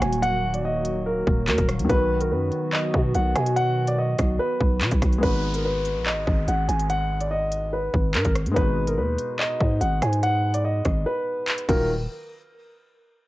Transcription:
0.00 1.23 D#1 loud
0.00 1.86 D#3 medium
0.00 1.83 F#3 medium
0.00 5.19 F#3 medium
0.00 1.84 A#3 medium
0.00 1.86 A#3 medium
0.00 1.85 D#4 medium
0.00 1.86 F#4 medium
0.00 1.87 F#4 medium
0.00 1.88 A#4 medium
0.00 0.19 G#5 medium
0.00 cross-stick loud
0.00 closed hi-hat loud
0.13 closed hi-hat medium
0.23 0.52 F#5 loud
0.23 closed hi-hat medium
0.54 0.63 D5 medium
0.54 closed hi-hat medium
0.65 1.04 D#5 medium
0.85 closed hi-hat medium
1.06 1.46 A#4 medium
1.27 1.49 D#1 loud
1.27 kick loud
1.48 1.58 D#2 loud
1.48 1.65 A#4 medium
1.48 clap loud
1.48 closed hi-hat medium
1.58 1.81 D#1 loud
1.58 kick loud
1.58 closed hi-hat medium
1.69 cross-stick loud
1.69 closed hi-hat medium
1.79 1.89 D#2 loud
1.79 closed hi-hat medium
1.85 5.17 D#3 medium
1.85 5.18 F#3 medium
1.89 2.33 B1 loud
1.89 5.20 D#3 medium
1.89 5.20 B3 medium
1.89 5.19 B3 medium
1.89 5.20 F#4 medium
1.89 2.19 B4 loud
1.89 kick loud
1.89 closed hi-hat medium
1.95 5.21 B4 medium
2.21 2.29 A#4 medium
2.21 closed hi-hat medium
2.31 2.51 F#2 loud
2.31 2.71 B4 medium
2.52 closed hi-hat medium
2.73 3.12 D#5 medium
2.73 clap loud
2.94 3.14 B2 loud
2.94 kick loud
3.14 3.35 B1 loud
3.14 3.32 F#5 medium
3.14 closed hi-hat medium
3.35 4.15 B2 loud
3.35 3.52 G#5 medium
3.35 cross-stick loud
3.35 closed hi-hat loud
3.46 closed hi-hat medium
3.56 3.86 F#5 loud
3.56 closed hi-hat medium
3.87 3.96 D5 medium
3.87 closed hi-hat medium
3.98 4.37 D#5 medium
4.18 4.39 B1 loud
4.18 kick loud
4.18 cross-stick loud
4.18 closed hi-hat medium
4.39 5.19 B4 loud
4.61 4.83 B1 loud
4.61 kick loud
4.81 4.91 B2 medium
4.81 clap loud
4.81 closed hi-hat medium
4.91 5.02 B1 loud
4.91 kick medium
4.91 closed hi-hat medium
5.02 5.22 B1 loud
5.02 kick loud
5.02 cross-stick loud
5.02 closed hi-hat loud
5.13 closed hi-hat medium
5.18 8.50 G#3 medium
5.18 8.51 B3 medium
5.23 5.97 G#1 loud
5.23 8.52 D#4 medium
5.23 8.54 F#4 medium
5.23 5.52 B4 loud
5.23 kick loud
5.23 closed hi-hat medium
5.23 downlifter medium
5.28 8.55 B4 medium
5.54 5.63 A#4 medium
5.54 closed hi-hat medium
5.65 6.04 B4 medium
5.85 closed hi-hat medium
5.96 6.13 A#1 loud
6.06 6.45 D#5 medium
6.06 clap loud
6.11 6.26 G#1 loud
6.27 6.47 G#1 loud
6.27 kick loud
6.48 6.68 G#1 loud
6.48 6.65 F#5 medium
6.48 closed hi-hat medium
6.68 7.90 G#1 loud
6.68 6.85 G#5 medium
6.68 closed hi-hat medium
6.79 closed hi-hat medium
6.90 7.19 F#5 loud
6.90 closed hi-hat medium
7.21 7.29 D5 medium
7.21 closed hi-hat medium
7.31 7.70 D#5 medium
7.52 closed hi-hat medium
7.73 8.12 B4 medium
7.94 8.16 G#1 loud
7.94 kick loud
8.14 8.25 G#2 loud
8.14 8.32 A#4 medium
8.14 clap loud
8.14 closed hi-hat medium
8.25 8.47 G#1 loud
8.25 kick medium
8.25 closed hi-hat medium
8.35 cross-stick loud
8.35 closed hi-hat loud
8.46 8.56 G#2 loud
8.46 closed hi-hat medium
8.52 11.62 G#3 medium
8.52 11.64 B3 medium
8.56 8.99 G#1 loud
8.56 11.65 D#4 medium
8.56 11.66 F#4 medium
8.56 8.85 B4 loud
8.56 kick loud
8.56 closed hi-hat medium
8.61 11.67 B4 medium
8.87 8.96 A#4 medium
8.87 closed hi-hat medium
8.98 9.18 D#2 loud
8.98 9.37 B4 medium
9.18 closed hi-hat medium
9.39 9.79 D#5 medium
9.39 clap loud
9.60 9.80 G#2 loud
9.60 kick loud
9.81 10.01 G#1 loud
9.81 9.98 F#5 medium
9.81 closed hi-hat medium
10.02 10.82 G#2 loud
10.02 10.19 G#5 medium
10.02 cross-stick loud
10.02 closed hi-hat medium
10.13 closed hi-hat medium
10.23 10.52 F#5 loud
10.23 closed hi-hat medium
10.54 10.63 D5 medium
10.54 closed hi-hat medium
10.65 11.04 D#5 medium
10.85 11.05 G#1 loud
10.85 kick loud
10.85 cross-stick medium
10.85 closed hi-hat medium
11.06 11.65 B4 medium
11.48 clap loud
11.48 closed hi-hat medium
11.58 closed hi-hat medium
11.69 12.08 D#1 loud
11.69 11.88 D#3 medium
11.69 11.88 F#3 medium
11.69 11.88 F4 medium
11.69 11.88 A#4 medium
11.69 11.88 A#4 loud
11.69 kick loud
11.69 closed hi-hat medium
11.69 crash medium

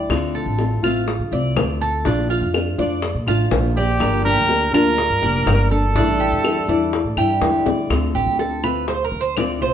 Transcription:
0.00 0.10 E4 medium
0.00 0.33 D5 medium
0.10 0.45 D2 loud
0.10 0.58 D3 medium
0.10 0.58 A3 medium
0.10 0.58 C4 medium
0.10 0.59 F4 medium
0.10 high bongo medium
0.10 claves medium
0.35 0.82 A4 medium
0.46 0.81 A1 medium
0.59 0.82 D3 soft
0.59 0.83 A3 soft
0.59 0.83 C4 soft
0.59 0.82 F4 medium
0.59 high bongo medium
0.83 1.18 A1 medium
0.83 1.06 A3 medium
0.83 1.07 C4 medium
0.83 1.07 F4 medium
0.83 1.31 F4 medium
0.83 claves medium
1.08 muted nylon-string guitar stroke medium
1.08 high bongo medium
1.20 1.31 D3 medium
1.31 1.55 C2 medium
1.31 1.56 A3 medium
1.31 1.56 C4 medium
1.31 1.55 F4 medium
1.31 1.80 D5 medium
1.56 2.03 D2 loud
1.56 2.04 D3 soft
1.56 2.05 A3 medium
1.56 2.05 C4 medium
1.56 2.05 F4 medium
1.56 high bongo medium
1.56 low bongo medium
1.56 claves medium
1.81 2.05 A4 medium
2.05 2.40 A#1 loud
2.05 2.53 F3 medium
2.05 2.53 A3 medium
2.05 2.29 D4 medium
2.05 2.54 D4 medium
2.05 2.54 F4 medium
2.05 high bongo medium
2.29 2.77 F4 medium
2.29 high bongo soft
2.42 2.77 F2 medium
2.54 2.77 F3 soft
2.54 2.78 A3 soft
2.54 2.78 D4 medium
2.54 2.77 F4 soft
2.54 high bongo medium
2.54 claves medium
2.78 3.13 F2 medium
2.78 3.02 A3 medium
2.78 3.02 D4 medium
2.78 3.02 F4 medium
2.78 3.26 D5 medium
2.78 high bongo soft
3.02 muted nylon-string guitar stroke medium
3.02 high bongo medium
3.15 3.27 A#2 medium
3.27 3.50 A1 medium
3.27 3.51 A3 medium
3.27 3.51 D4 medium
3.27 3.50 F4 medium
3.27 3.75 F4 medium
3.27 high bongo soft
3.27 claves medium
3.51 3.98 A#1 loud
3.51 3.99 F3 medium
3.51 4.00 A3 medium
3.51 4.00 D4 medium
3.51 4.00 F4 medium
3.51 high bongo medium
3.51 low bongo medium
3.77 4.22 A#3 medium
3.77 4.22 G4 loud
3.77 4.24 D5 medium
4.00 4.35 G1 loud
4.00 4.48 D3 medium
4.00 4.48 F3 medium
4.00 4.49 A#3 medium
4.00 4.49 D4 medium
4.00 4.49 G4 medium
4.00 high bongo medium
4.00 claves medium
4.25 4.70 D4 medium
4.25 4.73 G4 medium
4.25 4.70 A#4 loud
4.37 4.72 D2 loud
4.49 4.73 F3 soft
4.49 4.73 A#3 soft
4.49 4.73 D4 soft
4.49 4.72 G4 medium
4.49 high bongo medium
4.73 5.08 D2 medium
4.73 4.97 F3 medium
4.73 4.98 A#3 medium
4.73 5.67 D4 medium
4.73 4.97 D4 medium
4.73 5.21 F4 medium
4.73 4.97 G4 medium
4.73 5.67 A#4 loud
4.73 claves medium
4.98 muted nylon-string guitar stroke medium
4.98 high bongo medium
5.10 5.22 G2 medium
5.22 5.45 F1 medium
5.22 5.46 F3 medium
5.22 5.46 A#3 medium
5.22 5.46 D4 medium
5.22 5.46 G4 medium
5.22 5.70 D5 medium
5.46 5.93 G1 loud
5.46 5.95 F3 medium
5.46 5.95 A#3 medium
5.46 5.95 D4 medium
5.46 5.95 G4 medium
5.46 high bongo medium
5.46 low bongo medium
5.46 claves medium
5.71 7.38 D4 medium
5.71 7.38 A4 medium
5.71 5.95 A4 medium
5.95 6.30 A1 loud
5.95 6.43 D3 medium
5.95 6.44 G3 medium
5.95 6.19 D4 medium
5.95 6.44 D4 medium
5.95 6.44 E4 loud
5.95 high bongo medium
6.20 6.67 G4 medium
6.20 high bongo soft
6.32 6.67 E2 medium
6.44 6.68 D3 soft
6.44 6.68 G3 soft
6.44 6.68 D4 soft
6.44 6.68 E4 medium
6.44 high bongo medium
6.44 claves medium
6.68 7.03 E2 medium
6.68 6.92 G3 medium
6.68 6.92 D4 medium
6.68 6.92 E4 medium
6.68 7.16 D5 medium
6.68 high bongo soft
6.93 muted nylon-string guitar stroke medium
6.93 high bongo medium
7.05 7.16 A2 medium
7.17 7.39 G2 medium
7.17 7.41 G3 medium
7.17 7.41 D4 medium
7.17 7.41 E4 medium
7.17 7.65 G4 medium
7.17 high bongo soft
7.17 claves medium
7.41 7.63 E2 medium
7.41 7.89 D3 soft
7.41 7.90 G3 soft
7.41 7.90 D4 medium
7.41 7.90 E4 medium
7.41 high bongo medium
7.41 low bongo medium
7.66 7.88 D2 medium
7.66 7.90 D5 medium
7.66 high bongo medium
7.90 8.13 D2 medium
7.90 8.63 D3 medium
7.90 8.65 A3 medium
7.90 8.64 C4 medium
7.90 8.63 F4 medium
7.90 high bongo medium
7.90 claves medium
8.14 8.26 A1 medium
8.14 8.39 G4 medium
8.14 high bongo soft
8.26 9.08 D2 medium
8.39 8.63 A4 medium
8.39 high bongo soft
8.63 8.87 A3 medium
8.63 8.87 C4 medium
8.63 8.87 F4 medium
8.63 8.87 B4 loud
8.63 high bongo soft
8.63 claves medium
8.88 9.04 C5 medium
8.88 muted nylon-string guitar stroke medium
8.88 high bongo medium
9.05 9.20 A#4 medium
9.12 9.60 D2 medium
9.21 9.36 C5 medium
9.37 9.60 D3 medium
9.37 9.61 A3 medium
9.37 9.61 C4 medium
9.37 9.60 F4 medium
9.37 9.61 D5 loud
9.37 high bongo soft
9.37 low bongo medium
9.37 claves medium
9.60 9.74 C2 medium
9.60 9.74 A3 soft
9.60 9.74 C4 soft
9.60 9.74 F4 soft
9.60 9.74 C5 medium
9.60 high bongo soft

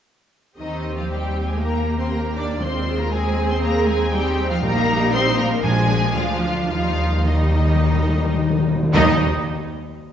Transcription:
0.58 4.59 D#2 soft
0.58 0.94 D#3 soft
0.58 1.56 C4 soft
0.58 0.94 D#4 soft
0.58 2.07 G4 soft
0.58 0.94 D#5 medium
0.96 1.09 F3 soft
0.96 1.01 F4 soft
0.96 1.09 F5 soft
1.09 1.47 G3 soft
1.09 1.46 G4 soft
1.09 1.47 G5 medium
1.47 1.60 G#3 soft
1.47 1.60 G#4 soft
1.47 1.61 G#5 soft
1.60 1.98 A#3 soft
1.60 2.62 A#3 soft
1.60 1.97 A#4 soft
1.60 1.98 A#5 medium
1.98 2.11 C4 medium
1.98 2.03 C5 soft
1.98 2.11 C6 medium
2.11 2.19 A#3 medium
2.11 2.61 G4 soft
2.11 2.36 A#4 soft
2.11 2.36 A#5 medium
2.36 2.61 D4 soft
2.36 2.61 D5 soft
2.36 2.45 D6 medium
2.60 3.33 D#3 medium
2.60 3.12 G#3 medium
2.60 2.98 C4 medium
2.60 3.11 F4 soft
2.60 2.99 C5 soft
2.60 2.99 C6 medium
2.99 3.12 A#3 medium
2.99 3.12 A#4 medium
2.99 3.13 A#5 medium
3.11 3.49 G#3 medium
3.11 4.11 C4 medium
3.11 4.13 G#4 medium
3.11 3.49 G#4 medium
3.11 3.50 G#5 medium
3.49 3.55 C4 medium
3.49 3.62 C5 medium
3.49 3.55 C6 medium
3.62 3.87 A#3 medium
3.62 3.87 A#4 medium
3.62 3.87 A#5 medium
3.87 4.13 G#3 medium
3.87 4.12 G#4 medium
3.87 4.12 G#5 medium
4.12 4.50 G3 medium
4.12 4.62 C4 medium
4.12 4.62 D#4 medium
4.12 4.49 G4 medium
4.12 4.50 G5 medium
4.49 4.55 F3 medium
4.49 4.54 F4 medium
4.49 4.63 F5 medium
4.62 5.59 A#1 medium
4.62 5.34 A#2 medium
4.62 5.60 G3 medium
4.62 5.12 A#3 medium
4.62 5.60 D#4 medium
4.62 5.12 A#4 medium
4.62 5.12 A#5 loud
5.12 5.38 C4 medium
5.12 5.38 C5 medium
5.12 5.38 C6 medium
5.38 5.63 A#3 medium
5.38 5.63 A#4 medium
5.38 5.46 A#5 medium
5.63 6.14 A#1 medium
5.63 6.38 A#2 medium
5.63 6.14 F3 medium
5.63 6.14 G#3 medium
5.63 6.15 D4 medium
5.63 6.14 G#4 medium
5.63 6.14 G#5 medium
6.15 6.69 D2 medium
6.15 6.68 F3 medium
6.15 6.68 D4 medium
6.15 6.68 F4 medium
6.15 6.68 F5 medium
6.69 8.73 D#2 medium
6.69 6.76 D#3 soft
6.69 7.24 F3 medium
6.69 7.24 G3 medium
6.69 7.24 D#4 medium
6.69 7.24 F4 medium
6.69 7.24 F5 medium
6.77 6.84 D#3 soft
6.85 6.92 D#3 soft
6.93 7.00 D#3 soft
7.01 7.08 D#3 soft
7.09 7.16 D#3 soft
7.17 7.25 D#3 soft
7.25 8.67 D#3 medium
7.25 7.33 D#3 soft
7.25 8.70 G3 medium
7.25 8.64 D#4 medium
7.25 8.70 D#4 medium
7.25 8.67 D#5 medium
7.34 7.41 D#3 soft
7.42 7.49 D#3 soft
7.51 7.58 D#3 soft
7.59 7.66 D#3 medium
7.67 7.74 D#3 medium
7.75 7.82 D#3 medium
7.84 7.91 D#3 medium
7.92 7.99 D#3 medium
8.01 8.08 D#3 medium
8.09 8.17 D#3 medium
8.18 8.25 D#3 medium
8.26 8.33 D#3 medium
8.34 8.41 D#3 medium
8.42 8.49 D#3 medium
8.50 8.57 D#3 medium
8.58 8.65 D#3 medium
8.67 8.73 D#3 medium
8.75 8.82 D#3 medium
8.83 8.91 D#3 medium
8.94 9.24 D#2 loud
8.94 9.19 D#3 medium
8.94 9.24 D#3 medium
8.94 9.24 G3 medium
8.94 9.24 D#4 medium
8.94 9.25 D#5 medium

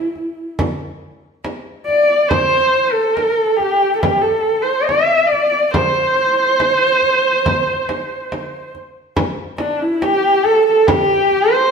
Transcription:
0.00 0.54 E4 medium
0.15 frame drum soft
0.59 frame drum medium
1.45 frame drum medium
1.85 2.30 D5 loud
1.85 frame drum soft
2.29 2.93 C5 loud
2.29 frame drum medium
2.92 3.58 A4 medium
3.17 frame drum soft
3.57 3.95 G4 loud
3.57 frame drum soft
3.95 4.02 A4 medium
4.00 4.23 G4 loud
4.00 frame drum medium
4.22 4.63 A4 medium
4.62 4.86 C5 medium
4.85 5.28 E5 medium
4.89 frame drum medium
5.27 5.72 D5 medium
5.32 frame drum soft
5.71 8.72 C5 loud
5.71 frame drum medium
6.16 frame drum soft
6.60 frame drum medium
7.03 frame drum soft
7.46 frame drum medium
7.89 frame drum medium
8.32 frame drum medium
8.75 frame drum soft
9.17 frame drum medium
9.58 9.82 D4 medium
9.58 frame drum medium
9.81 10.03 E4 medium
10.02 10.47 G4 loud
10.02 frame drum medium
10.45 10.65 A4 loud
10.45 frame drum soft
10.66 10.88 A4 loud
10.87 11.53 G4 loud
10.87 frame drum medium
11.32 frame drum soft
11.52 11.71 C5 loud

